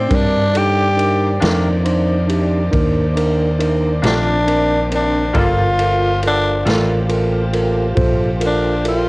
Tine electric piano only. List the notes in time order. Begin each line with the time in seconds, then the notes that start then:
0.08 C4 D4 A#4
0.53 D4 D#4 A4
0.96 D4 D#4 A#4
1.42 D4 D#4 A#4
1.83 D4 D#4 C5
2.27 D4 D#4 G4
2.71 D4 D#4 A#4
3.16 D4 D#4 A#4
3.59 D4 D#4 A#4
4.03 C4 D4 F4
4.47 C4 D4 A#4
4.90 C4 D4 A#4
5.34 F4 A4 A#4
5.79 F4 A4 A#4
6.23 F4 A4 A#4
6.66 F4 A4 A#4
7.09 F4 A4 A#4
7.53 F4 A4 A#4
7.95 F4 A4 C5
8.41 F4 A4 A#4
8.85 F4 A4 A#4